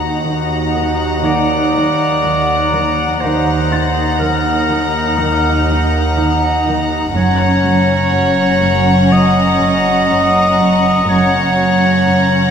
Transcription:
Already playing: D#2 D#4 F#4 F#5 A#5 A6 A#6
0.26 D#3 F#6
0.75 D#3
1.25 D#3 D5
1.74 D#3
2.24 D#3
2.74 D#3
3.21 D#2 D#3 D#4 C5 F#5 A#5
3.72 D#4 A6
4.19 D#3 A#4
4.70 D#3
5.05 G6
5.18 D#3
5.68 D#3
6.18 D#3
6.67 D#3
7.14 F#1 F#2 C#4 C#5 F#5 A#5 C#6
7.65 F#3
8.13 F#2 A#5
8.62 F#2
9.11 F#2 D#5
9.60 F#2
10.10 F#2
10.59 F#2
11.08 F#1 F#2 C#4 C#5 F#5 A#5
11.57 F#3
12.07 F#2

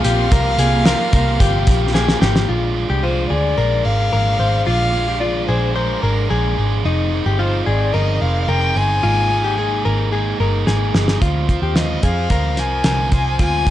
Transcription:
Already playing: C3 A#3 F4
0.03 A#1 A#3 F4 G4 F5, closed hi-hat
0.30 C2 C3 F3 A#3 F4 G4 A#4, kick, closed hi-hat
0.58 C2 A#3 F4 G4 G#4, closed hi-hat
0.85 F3 A#3 F4 G4 A#4, snare, clap, closed hi-hat
1.12 C2 A#3 F4 G4 A#4, kick, closed hi-hat
1.39 G1 C3 F3 A#3 F4 G4, kick, closed hi-hat
1.66 A#1 A#3 F4 G4, kick, closed hi-hat
1.94 F3 A#3 F4 G4 G#4, snare, clap
2.09 snare
2.21 G#1 A#3 F4 G4, snare
2.36 snare
2.48 A#1 A#2 F3 G#3 D4 F4 G#4
2.75 G#3 D4 G#4
2.90 C2 G4
3.03 A#2 F3 G#3 D4 F4 G#4 C5
3.30 D2 G#3 D4 G#4 D5
3.57 A#1 F3 G#3 D4 G#4 A#4
3.84 G#1 G#3 D4 G#4 F5
4.12 G#1 A#2 F3 G#3 D4 G#4 A#4
4.39 G#1 G#3 D4 G#4 C5
4.66 A#1 A#2 F3 G#3 D4 F4 G#4 F5
4.93 G#3 D4 G#4
5.08 G4
5.20 A#2 F3 G#3 D4 F4 G#4 D5
5.47 A#1 G#3 D4 G#4 C5
5.75 F3 G#3 D4 G#4 A#4 C5
6.02 G#1 G#3 D4 G#4 A#4
6.30 A#1 A#2 F3 G#3 D4 G#4
6.56 G#1 G#3 D4 G#4
6.84 F1 F3 C4 D#4 G#4
7.11 C4 D#4 G#4
7.26 G1 G4
7.39 F3 C4 D#4 F4 G#4 C5
7.66 G#1 C4 D#4 G#4 D5
7.93 G1 F3 C4 D#4 G#4 A#4 D#5
8.21 F1 C4 D#4 G#4 F5
8.48 F1 F3 C4 D#4 G#4 A#4 G5
8.76 G1 C4 D#4 G#4 C5 G#5
9.03 G#1 G#3 A#3 D#4 F4 G#4
9.30 A#3 D#4 G#4
9.44 G4
9.58 G#3 A#3 D#4 G#4
9.85 G#1 A#3 D#4 G#4 A#4
10.12 G#3 A#3 D#4 G#4
10.40 G1 A#3 D#4 G#4 A#4
10.67 G#1 G#3 A#3 D#4 G#4, snare
10.94 G1 A#3 D#4 G#4, snare
11.08 snare
11.21 D2 D3 G#3 C4 F4 C5, kick, closed hi-hat
11.49 C4 F4 C5, kick, closed hi-hat
11.62 D#2 G4
11.75 D3 G#3 C4 F4 C5 D#5, snare, closed hi-hat
12.02 F2 C4 F4 G#4 C5 F5, kick, closed hi-hat
12.29 D2 G#3 C4 F4 A#4 C5, kick, closed hi-hat
12.56 C2 C4 F4 C5 G#5, snare, closed hi-hat
12.84 C2 D3 G#3 C4 F4 A#4 C5, snare, closed hi-hat
13.11 C2 C4 F4 C5 G#5, kick, closed hi-hat
13.39 D2 D3 G#3 C4 F4 C5 G#5, kick, closed hi-hat
13.66 C5, kick, closed hi-hat

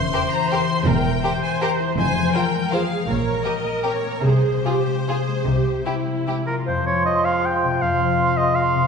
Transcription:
Already playing: E3 A#4 C5 C6
0.12 G4 A#4 C5
0.31 E4 A#5
0.49 F4 G4 A#4 C6
0.69 E4
0.86 E1 E2 E3 A#4 G5
1.04 C5
1.22 G4 A#4 C5
1.42 E4 G#5
1.61 F4 G4 A#4 A#5
1.80 E4
1.98 F1 F2 F3 C5 G#5
2.16 G#4
2.34 F4 A#4 C5 G5
2.53 G#3
2.71 A#3 F4 G#4 C5 F5
2.91 G#3
3.08 A#1 A#2 A#4 C#5
3.26 A#4
3.44 G4 A#4 D#5
3.64 A#3
3.83 C4 G4 A#4 C#5
4.04 A#3
4.22 C2 C3 G#4 C5
4.43 G#4
4.65 F4 G4 G#4
4.86 G#3
5.07 A#3 F4 G#4
5.28 G#3
5.46 C2 C3 G4
5.65 G4
5.85 E4 G4
6.07 G3
6.27 G#3 E4 G4
6.47 G3 F4 A#4
6.67 F2 F3 C5 C6
6.85 C4 C#5
7.05 F4 D#5
7.25 G#4 F5
7.44 F4 G5
7.63 C3
7.80 F2 F5 C6
7.98 C4
8.17 F4
8.36 G#4 D#5
8.55 F4 F5 C6
8.75 C3

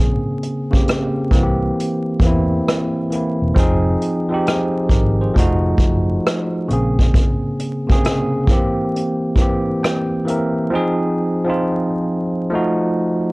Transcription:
Already playing: A#1 C#3 A#3 C4 G#4
0.43 closed hi-hat
0.71 C#3 A#3 C4, kick
0.76 G4
0.88 cross-stick, closed hi-hat
1.31 C2 E3 A#3 C4, kick, closed hi-hat
1.37 F#4
1.43 G4
1.80 closed hi-hat
2.20 E2 E3 A#3, kick, closed hi-hat
2.25 C4 E4
2.68 cross-stick, closed hi-hat
3.10 E3 A#3 C4, closed hi-hat
3.15 E4
3.42 E1
3.54 F1 F3 C4 D#4, kick, closed hi-hat
3.59 G#4
4.02 closed hi-hat
4.29 F3 C4 D#4
4.34 G4
4.46 F4 G#4, cross-stick, closed hi-hat
4.89 G#1 G4 A#4, kick, closed hi-hat
5.21 G#4 C5
5.34 F1 F3 A3 D#4, kick
5.38 F#4, closed hi-hat
5.78 F#1, kick, closed hi-hat
6.27 cross-stick, closed hi-hat
6.68 A#1 C#3 A#3 C4, closed hi-hat
6.73 G#4
6.99 kick
7.14 kick, closed hi-hat
7.60 closed hi-hat
7.87 C3 A#3 C4, kick
7.92 C#3 G#4
8.04 cross-stick, closed hi-hat
8.47 E3 A#3 C4, kick, closed hi-hat
8.52 G4
8.96 closed hi-hat
9.36 E3 A#3, kick, closed hi-hat
9.40 C4 G4
9.83 G5, cross-stick, closed hi-hat
10.25 E3 A#3 C4 E5, closed hi-hat
10.30 A#4
10.70 F3 C4 D#4
10.75 G#4
11.45 F3 C4 D#4
11.50 F4
12.50 F3 A3 D#4
12.55 F#4

